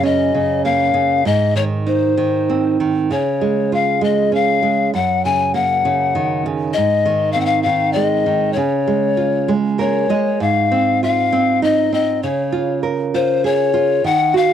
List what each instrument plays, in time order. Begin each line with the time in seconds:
Already playing: nylon-string guitar F#2 C#3
0.03 nylon-string guitar C#4, pan flute D#5
0.35 nylon-string guitar C#3
0.65 nylon-string guitar A#3, pan flute F5
0.94 nylon-string guitar C#3
1.25 nylon-string guitar G#2, pan flute D#5
1.55 nylon-string guitar D#3, pan flute C#5
1.86 nylon-string guitar D#4, pan flute C5
2.17 nylon-string guitar D#3
2.49 nylon-string guitar C4
2.80 nylon-string guitar D#3
3.11 nylon-string guitar C#3, pan flute C#5
3.41 nylon-string guitar G#3
3.72 nylon-string guitar F4, pan flute F5
4.01 nylon-string guitar G#3, pan flute D#5
4.32 nylon-string guitar C#4, pan flute F5
4.63 nylon-string guitar G#3
4.94 nylon-string guitar F#2, pan flute F#5
5.25 nylon-string guitar C#3, pan flute G#5
5.54 nylon-string guitar A#3, pan flute F#5
5.85 nylon-string guitar C#3
6.15 nylon-string guitar D#3
6.46 nylon-string guitar C#3
6.73 nylon-string guitar G#2, pan flute D#5
7.05 nylon-string guitar D#3
7.32 nylon-string guitar C4, pan flute F5
7.41 pan flute F#5
7.46 pan flute F5
7.63 nylon-string guitar D#3, pan flute F5
7.93 nylon-string guitar G#3, pan flute D5
8.05 pan flute D#5
8.26 nylon-string guitar D#3
8.53 nylon-string guitar C#3, pan flute C#5
8.88 nylon-string guitar G#3
9.17 nylon-string guitar F4
9.48 nylon-string guitar G#3
9.78 nylon-string guitar A#3 A#4, pan flute C#5
10.10 nylon-string guitar G#3 D#5
10.40 nylon-string guitar G#2, pan flute F5
10.72 nylon-string guitar C4
11.03 nylon-string guitar F4, pan flute F5
11.33 nylon-string guitar C4
11.62 nylon-string guitar D#4, pan flute D#5
11.92 nylon-string guitar C4, pan flute D#5
12.23 nylon-string guitar C#3, pan flute C#5
12.52 nylon-string guitar F4
12.83 nylon-string guitar A#4
13.14 nylon-string guitar F4, pan flute C5
13.44 nylon-string guitar G#4, pan flute C#5
13.74 nylon-string guitar F4
14.04 nylon-string guitar D#3, pan flute F#5
14.34 nylon-string guitar F#4, pan flute F5